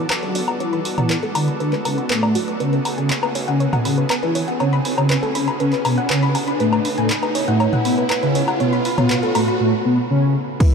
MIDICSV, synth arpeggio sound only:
0, 0, Header, 1, 2, 480
1, 0, Start_track
1, 0, Tempo, 500000
1, 578, Time_signature, 4, 2, 24, 8
1, 10315, End_track
2, 0, Start_track
2, 0, Title_t, "Synth arpeggio sound"
2, 0, Program_c, 0, 84
2, 100, Note_on_c, 0, 71, 84
2, 187, Note_off_c, 0, 71, 0
2, 220, Note_on_c, 0, 71, 79
2, 277, Note_off_c, 0, 71, 0
2, 340, Note_on_c, 0, 74, 79
2, 427, Note_off_c, 0, 74, 0
2, 461, Note_on_c, 0, 78, 78
2, 518, Note_off_c, 0, 78, 0
2, 580, Note_on_c, 0, 73, 78
2, 638, Note_off_c, 0, 73, 0
2, 700, Note_on_c, 0, 83, 100
2, 757, Note_off_c, 0, 83, 0
2, 819, Note_on_c, 0, 83, 75
2, 877, Note_off_c, 0, 83, 0
2, 940, Note_on_c, 0, 74, 75
2, 1026, Note_off_c, 0, 74, 0
2, 1058, Note_on_c, 0, 71, 93
2, 1117, Note_off_c, 0, 71, 0
2, 1179, Note_on_c, 0, 69, 98
2, 1214, Note_off_c, 0, 69, 0
2, 1298, Note_on_c, 0, 83, 103
2, 1357, Note_off_c, 0, 83, 0
2, 1418, Note_on_c, 0, 83, 74
2, 1476, Note_off_c, 0, 83, 0
2, 1537, Note_on_c, 0, 71, 78
2, 1573, Note_off_c, 0, 71, 0
2, 1659, Note_on_c, 0, 71, 81
2, 1717, Note_off_c, 0, 71, 0
2, 1777, Note_on_c, 0, 71, 77
2, 1866, Note_off_c, 0, 71, 0
2, 1898, Note_on_c, 0, 83, 74
2, 1956, Note_off_c, 0, 83, 0
2, 2018, Note_on_c, 0, 71, 85
2, 2077, Note_off_c, 0, 71, 0
2, 2138, Note_on_c, 0, 74, 98
2, 2196, Note_off_c, 0, 74, 0
2, 2258, Note_on_c, 0, 66, 100
2, 2347, Note_off_c, 0, 66, 0
2, 2379, Note_on_c, 0, 86, 76
2, 2437, Note_off_c, 0, 86, 0
2, 2498, Note_on_c, 0, 71, 81
2, 2557, Note_off_c, 0, 71, 0
2, 2618, Note_on_c, 0, 71, 75
2, 2676, Note_off_c, 0, 71, 0
2, 2737, Note_on_c, 0, 83, 76
2, 2796, Note_off_c, 0, 83, 0
2, 2858, Note_on_c, 0, 80, 74
2, 2916, Note_off_c, 0, 80, 0
2, 2978, Note_on_c, 0, 83, 80
2, 3037, Note_off_c, 0, 83, 0
2, 3100, Note_on_c, 0, 71, 75
2, 3157, Note_off_c, 0, 71, 0
2, 3218, Note_on_c, 0, 73, 75
2, 3306, Note_off_c, 0, 73, 0
2, 3338, Note_on_c, 0, 78, 97
2, 3396, Note_off_c, 0, 78, 0
2, 3457, Note_on_c, 0, 73, 85
2, 3516, Note_off_c, 0, 73, 0
2, 3579, Note_on_c, 0, 78, 101
2, 3666, Note_off_c, 0, 78, 0
2, 3697, Note_on_c, 0, 83, 75
2, 3756, Note_off_c, 0, 83, 0
2, 3818, Note_on_c, 0, 71, 77
2, 3905, Note_off_c, 0, 71, 0
2, 3936, Note_on_c, 0, 71, 83
2, 4026, Note_off_c, 0, 71, 0
2, 4059, Note_on_c, 0, 71, 76
2, 4117, Note_off_c, 0, 71, 0
2, 4177, Note_on_c, 0, 73, 77
2, 4266, Note_off_c, 0, 73, 0
2, 4300, Note_on_c, 0, 78, 76
2, 4357, Note_off_c, 0, 78, 0
2, 4418, Note_on_c, 0, 73, 84
2, 4477, Note_off_c, 0, 73, 0
2, 4539, Note_on_c, 0, 83, 106
2, 4597, Note_off_c, 0, 83, 0
2, 4657, Note_on_c, 0, 83, 74
2, 4716, Note_off_c, 0, 83, 0
2, 4778, Note_on_c, 0, 73, 79
2, 4865, Note_off_c, 0, 73, 0
2, 4895, Note_on_c, 0, 71, 99
2, 4956, Note_off_c, 0, 71, 0
2, 5018, Note_on_c, 0, 69, 101
2, 5053, Note_off_c, 0, 69, 0
2, 5136, Note_on_c, 0, 83, 99
2, 5196, Note_off_c, 0, 83, 0
2, 5258, Note_on_c, 0, 83, 77
2, 5316, Note_off_c, 0, 83, 0
2, 5377, Note_on_c, 0, 71, 84
2, 5413, Note_off_c, 0, 71, 0
2, 5498, Note_on_c, 0, 71, 80
2, 5556, Note_off_c, 0, 71, 0
2, 5616, Note_on_c, 0, 83, 78
2, 5676, Note_off_c, 0, 83, 0
2, 5737, Note_on_c, 0, 78, 102
2, 5825, Note_off_c, 0, 78, 0
2, 5857, Note_on_c, 0, 71, 85
2, 5946, Note_off_c, 0, 71, 0
2, 5978, Note_on_c, 0, 83, 101
2, 6036, Note_off_c, 0, 83, 0
2, 6096, Note_on_c, 0, 80, 78
2, 6156, Note_off_c, 0, 80, 0
2, 6218, Note_on_c, 0, 83, 76
2, 6253, Note_off_c, 0, 83, 0
2, 6337, Note_on_c, 0, 71, 83
2, 6396, Note_off_c, 0, 71, 0
2, 6458, Note_on_c, 0, 71, 76
2, 6516, Note_off_c, 0, 71, 0
2, 6576, Note_on_c, 0, 83, 77
2, 6636, Note_off_c, 0, 83, 0
2, 6698, Note_on_c, 0, 80, 79
2, 6756, Note_off_c, 0, 80, 0
2, 6816, Note_on_c, 0, 83, 78
2, 6876, Note_off_c, 0, 83, 0
2, 6937, Note_on_c, 0, 71, 78
2, 6996, Note_off_c, 0, 71, 0
2, 7056, Note_on_c, 0, 73, 76
2, 7146, Note_off_c, 0, 73, 0
2, 7179, Note_on_c, 0, 78, 99
2, 7237, Note_off_c, 0, 78, 0
2, 7298, Note_on_c, 0, 73, 82
2, 7357, Note_off_c, 0, 73, 0
2, 7419, Note_on_c, 0, 78, 104
2, 7505, Note_off_c, 0, 78, 0
2, 7536, Note_on_c, 0, 83, 74
2, 7596, Note_off_c, 0, 83, 0
2, 7658, Note_on_c, 0, 71, 77
2, 7745, Note_off_c, 0, 71, 0
2, 7776, Note_on_c, 0, 71, 81
2, 7866, Note_off_c, 0, 71, 0
2, 7899, Note_on_c, 0, 71, 79
2, 7957, Note_off_c, 0, 71, 0
2, 8018, Note_on_c, 0, 73, 78
2, 8106, Note_off_c, 0, 73, 0
2, 8138, Note_on_c, 0, 78, 81
2, 8196, Note_off_c, 0, 78, 0
2, 8257, Note_on_c, 0, 73, 80
2, 8316, Note_off_c, 0, 73, 0
2, 8379, Note_on_c, 0, 83, 104
2, 8437, Note_off_c, 0, 83, 0
2, 8498, Note_on_c, 0, 83, 78
2, 8557, Note_off_c, 0, 83, 0
2, 8620, Note_on_c, 0, 73, 77
2, 8706, Note_off_c, 0, 73, 0
2, 8738, Note_on_c, 0, 71, 96
2, 8797, Note_off_c, 0, 71, 0
2, 8860, Note_on_c, 0, 69, 101
2, 8894, Note_off_c, 0, 69, 0
2, 8978, Note_on_c, 0, 83, 98
2, 9037, Note_off_c, 0, 83, 0
2, 9099, Note_on_c, 0, 83, 78
2, 9157, Note_off_c, 0, 83, 0
2, 10178, Note_on_c, 0, 71, 83
2, 10178, Note_on_c, 0, 83, 57
2, 10237, Note_off_c, 0, 71, 0
2, 10237, Note_off_c, 0, 83, 0
2, 10315, End_track
0, 0, End_of_file